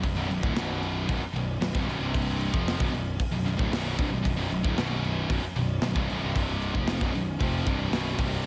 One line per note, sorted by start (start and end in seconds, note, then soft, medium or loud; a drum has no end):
0.03 0.12 B0 medium
0.03 0.15 B1 medium
0.03 0.17 F#2 medium
0.03 kick medium
0.03 crash medium
0.13 0.27 B0 medium
0.13 0.29 B1 loud
0.18 0.29 F#2 loud
0.28 0.41 B0 medium
0.28 0.43 B1 medium
0.28 0.44 F#2 medium
0.28 crash medium
0.43 0.53 D1 loud
0.43 0.56 D2 loud
0.43 0.56 A2 loud
0.43 kick loud
0.54 1.04 B0 medium
0.54 1.07 B1 medium
0.54 1.08 F#2 medium
0.54 1.09 B2 loud
0.54 snare loud
0.54 crash medium
0.83 crash medium
1.09 1.21 B0 loud
1.09 1.21 B1 medium
1.09 1.21 F#2 medium
1.09 kick loud
1.09 crash medium
1.22 muted picked electric bass stroke soft
1.22 muted distorted electric guitar stroke medium
1.33 1.58 B0 medium
1.33 1.56 B1 medium
1.33 1.56 F#2 medium
1.33 crash medium
1.59 1.72 B0 medium
1.59 1.75 B1 medium
1.59 1.75 F#2 medium
1.59 snare loud
1.59 crash medium
1.74 1.85 C1 loud
1.74 1.87 C2 medium
1.74 1.87 G2 medium
1.74 kick loud
1.85 1.99 B0 medium
1.85 2.02 B1 medium
1.90 2.03 F#2 medium
1.90 crash medium
2.00 2.49 C1 medium
2.00 2.53 C2 medium
2.00 2.54 G2 loud
2.00 2.53 C3 loud
2.14 kick loud
2.14 crash medium
2.41 crash medium
2.53 2.78 F1 loud
2.53 2.79 F2 loud
2.53 2.79 C3 loud
2.53 2.79 F3 loud
2.53 kick loud
2.68 snare loud
2.68 crash medium
2.79 2.90 B0 loud
2.79 2.92 B1 medium
2.79 2.92 F#2 loud
2.79 kick loud
2.91 3.16 B0 medium
2.91 3.14 B1 medium
2.91 3.14 F#2 medium
2.91 crash medium
3.20 kick loud
3.20 crash medium
3.31 3.42 B0 medium
3.31 3.45 B1 medium
3.31 3.45 F#2 medium
3.42 3.56 B0 medium
3.42 3.57 B1 medium
3.42 3.58 F#2 medium
3.48 crash medium
3.58 3.70 D1 loud
3.58 3.71 D2 medium
3.58 3.71 A2 medium
3.58 kick loud
3.70 3.95 B0 medium
3.70 3.97 B1 loud
3.70 3.97 F#2 loud
3.70 3.98 B2 loud
3.70 snare loud
3.70 crash medium
3.97 4.10 C1 loud
3.97 4.10 C2 medium
3.97 4.10 G2 loud
3.97 kick loud
3.97 crash medium
4.10 4.24 B0 medium
4.10 4.21 B1 medium
4.10 4.22 F#2 medium
4.15 4.26 B1 medium
4.15 4.26 F#2 medium
4.23 4.36 B0 medium
4.23 4.35 B1 medium
4.23 4.36 F#2 medium
4.23 kick medium
4.23 crash medium
4.27 4.38 B1 medium
4.27 4.39 F#2 medium
4.36 4.49 B0 loud
4.36 4.48 B1 loud
4.36 4.49 F#2 loud
4.49 4.62 B0 medium
4.49 4.63 B1 medium
4.49 4.63 F#2 medium
4.49 crash medium
4.54 4.66 B1 medium
4.54 4.66 F#2 medium
4.63 4.76 D1 loud
4.63 4.76 D2 loud
4.63 4.76 A2 loud
4.63 kick loud
4.68 4.78 A2 loud
4.76 5.26 B0 loud
4.76 5.28 B1 loud
4.76 5.28 F#2 loud
4.76 5.29 B2 loud
4.76 snare loud
4.76 crash medium
4.80 5.30 F#2 loud
5.04 crash medium
5.29 5.41 B0 medium
5.29 5.42 B1 loud
5.29 5.42 F#2 loud
5.29 kick loud
5.29 crash medium
5.42 muted picked electric bass stroke soft
5.42 muted distorted electric guitar stroke medium
5.56 5.80 B0 medium
5.56 5.77 B1 medium
5.56 5.78 F#2 medium
5.56 crash medium
5.82 5.94 B0 medium
5.82 5.94 B1 medium
5.82 5.95 F#2 medium
5.82 snare loud
5.82 crash medium
5.95 6.07 C1 loud
5.95 6.07 C2 medium
5.95 6.08 G2 medium
5.95 kick loud
6.09 6.21 B0 medium
6.09 6.21 B1 medium
6.09 6.21 F#2 loud
6.09 crash medium
6.22 6.71 C1 medium
6.22 6.73 C2 loud
6.22 6.73 G2 loud
6.22 6.73 C3 loud
6.36 kick loud
6.36 crash medium
6.62 crash medium
6.73 6.99 F1 loud
6.73 6.99 F2 loud
6.73 6.99 C3 medium
6.73 6.99 F3 loud
6.73 kick loud
6.87 snare loud
6.87 crash medium
7.01 7.13 B0 loud
7.01 7.13 B1 medium
7.01 7.13 F#2 loud
7.01 kick loud
7.14 7.38 B0 medium
7.14 7.35 B1 medium
7.14 7.35 F#2 medium
7.14 crash medium
7.39 7.64 F1 loud
7.39 7.65 F2 loud
7.39 7.65 C3 medium
7.39 7.65 F3 loud
7.39 kick loud
7.39 crash medium
7.66 7.91 C1 medium
7.66 7.91 C2 medium
7.66 7.92 G2 medium
7.66 7.92 C3 loud
7.66 kick loud
7.66 crash medium
7.92 8.16 B0 loud
7.92 8.17 B1 loud
7.92 8.18 F#2 loud
7.92 8.18 B2 loud
7.92 snare loud
7.92 crash medium
8.18 8.46 C1 medium
8.18 8.46 C2 medium
8.18 8.46 G2 medium
8.18 8.46 C3 loud
8.18 kick loud
8.18 crash loud